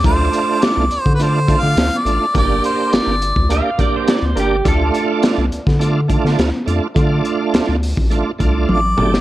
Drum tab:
HH |x-x-x-x-x-x-x-x-|x-x-x-x-x-x-x-x-|x-x-x-x-x-x-x-x-|x-x-x-o-x-x-----|
SD |----o-------o---|----o-------o---|----o--o---oo---|----o----------o|
T1 |----------------|----------------|----------------|------------o---|
T2 |----------------|----------------|----------------|--------------o-|
BD |o------o--o-----|o------o--o-----|o------o--o-----|o------o--o-----|